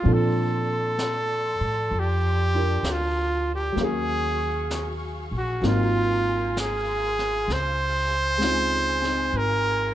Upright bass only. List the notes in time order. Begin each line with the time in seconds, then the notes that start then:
0.05 A#2
1.61 A2
1.91 F2
2.83 D2
3.76 D#2
5.31 A#1
5.62 G#1
7.48 C#2
9.33 G#1